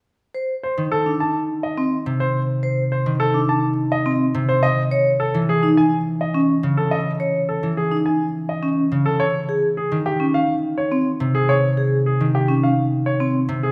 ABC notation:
X:1
M:4/4
L:1/16
Q:1/4=105
K:Cdor
V:1 name="Grand piano"
z4 c z A z a z2 e z3 c | z4 c z A z a z2 e z3 c | e z3 A z ^G z ^g z2 e z3 A | e z3 A z ^G z ^g z2 e z3 A |
_d z3 _A z G z f z2 d z3 A | _d z3 _A z G z f z2 d z3 A |]
V:2 name="Vibraphone"
z2 c z4 D z4 C z3 | z2 c z4 D z4 C z3 | z2 ^c z4 E z4 ^C z3 | z2 ^c z4 E z4 ^C z3 |
z2 _A z4 _D z4 C z3 | z2 _A z4 _D z4 C z3 |]
V:3 name="Harp" clef=bass
z4 z E,8- E, C,2- | C,4- C, E,8- E, C,2 | z4 z =E,8- E, ^C,2- | ^C,4- C, =E,8- E, C,2 |
z4 z E,8- E, C,2- | C,4- C, E,8- E, C,2 |]